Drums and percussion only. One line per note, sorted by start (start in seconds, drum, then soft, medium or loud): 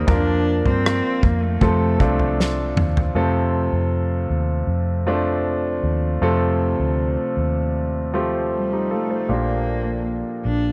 0.08 kick medium
0.08 floor tom loud
0.66 floor tom medium
0.86 cross-stick loud
1.23 kick medium
1.23 floor tom soft
1.61 kick medium
1.61 floor tom medium
2.00 kick medium
2.19 floor tom soft
2.40 snare medium
2.77 mid tom medium
2.97 floor tom medium